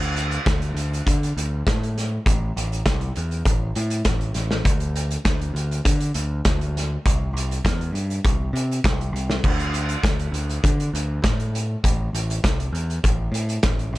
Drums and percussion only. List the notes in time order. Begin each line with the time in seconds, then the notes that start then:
0.02 closed hi-hat
0.16 closed hi-hat
0.31 closed hi-hat
0.46 kick, snare, closed hi-hat
0.62 closed hi-hat
0.77 closed hi-hat
0.93 closed hi-hat
1.07 kick, closed hi-hat
1.23 closed hi-hat
1.38 closed hi-hat
1.67 kick, snare, closed hi-hat
1.83 closed hi-hat
1.98 snare, closed hi-hat
2.26 kick, closed hi-hat
2.57 closed hi-hat
2.72 closed hi-hat
2.86 kick, snare, closed hi-hat
3.01 closed hi-hat
3.16 closed hi-hat
3.31 closed hi-hat
3.45 kick, closed hi-hat
3.75 closed hi-hat
3.90 closed hi-hat
4.05 kick, snare, closed hi-hat
4.21 closed hi-hat
4.34 snare, closed hi-hat
4.51 snare
4.65 kick, closed hi-hat
4.80 closed hi-hat
4.96 closed hi-hat
5.11 closed hi-hat
5.25 kick, snare, closed hi-hat
5.42 closed hi-hat
5.56 closed hi-hat
5.71 closed hi-hat
5.85 kick, closed hi-hat
6.01 closed hi-hat
6.14 closed hi-hat
6.45 kick, snare, closed hi-hat
6.61 closed hi-hat
6.77 snare, closed hi-hat
7.06 kick, closed hi-hat
7.37 closed hi-hat
7.51 closed hi-hat
7.65 kick, snare, closed hi-hat
7.81 closed hi-hat
7.95 closed hi-hat
8.10 closed hi-hat
8.25 kick, closed hi-hat
8.56 closed hi-hat
8.71 closed hi-hat
8.84 kick, snare, closed hi-hat
9.01 closed hi-hat
9.16 closed hi-hat
9.30 snare
9.44 kick, crash
9.59 closed hi-hat
9.74 closed hi-hat
9.89 closed hi-hat
10.04 kick, snare, closed hi-hat
10.19 closed hi-hat
10.34 closed hi-hat
10.50 closed hi-hat
10.64 kick, closed hi-hat
10.80 closed hi-hat
10.95 closed hi-hat
11.24 kick, snare, closed hi-hat
11.40 closed hi-hat
11.55 closed hi-hat
11.84 kick, closed hi-hat
12.15 closed hi-hat
12.30 closed hi-hat
12.44 kick, snare, closed hi-hat
12.60 closed hi-hat
12.75 closed hi-hat
12.90 closed hi-hat
13.04 kick, closed hi-hat
13.34 closed hi-hat
13.49 closed hi-hat
13.63 kick, snare, closed hi-hat
13.79 closed hi-hat